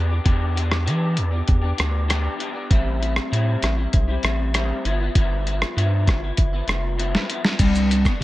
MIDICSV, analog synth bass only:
0, 0, Header, 1, 2, 480
1, 0, Start_track
1, 0, Tempo, 611621
1, 203, Time_signature, 4, 2, 24, 8
1, 6463, End_track
2, 0, Start_track
2, 0, Title_t, "Analog synth bass"
2, 0, Program_c, 0, 38
2, 0, Note_on_c, 0, 40, 98
2, 155, Note_off_c, 0, 40, 0
2, 201, Note_on_c, 0, 40, 87
2, 680, Note_on_c, 0, 52, 106
2, 692, Note_off_c, 0, 40, 0
2, 922, Note_on_c, 0, 40, 80
2, 934, Note_off_c, 0, 52, 0
2, 1115, Note_off_c, 0, 40, 0
2, 1166, Note_on_c, 0, 40, 92
2, 1357, Note_off_c, 0, 40, 0
2, 1407, Note_on_c, 0, 38, 88
2, 1790, Note_off_c, 0, 38, 0
2, 2123, Note_on_c, 0, 33, 100
2, 2507, Note_off_c, 0, 33, 0
2, 2606, Note_on_c, 0, 45, 98
2, 2797, Note_off_c, 0, 45, 0
2, 2846, Note_on_c, 0, 33, 90
2, 3037, Note_off_c, 0, 33, 0
2, 3089, Note_on_c, 0, 35, 95
2, 3278, Note_off_c, 0, 35, 0
2, 3324, Note_on_c, 0, 33, 89
2, 3707, Note_off_c, 0, 33, 0
2, 3805, Note_on_c, 0, 31, 95
2, 3996, Note_off_c, 0, 31, 0
2, 4044, Note_on_c, 0, 31, 91
2, 4427, Note_off_c, 0, 31, 0
2, 4526, Note_on_c, 0, 43, 107
2, 4770, Note_on_c, 0, 31, 85
2, 4782, Note_off_c, 0, 43, 0
2, 4959, Note_off_c, 0, 31, 0
2, 5008, Note_on_c, 0, 31, 82
2, 5197, Note_off_c, 0, 31, 0
2, 5239, Note_on_c, 0, 29, 93
2, 5623, Note_off_c, 0, 29, 0
2, 5957, Note_on_c, 0, 36, 90
2, 6342, Note_off_c, 0, 36, 0
2, 6438, Note_on_c, 0, 48, 103
2, 6463, Note_off_c, 0, 48, 0
2, 6463, End_track
0, 0, End_of_file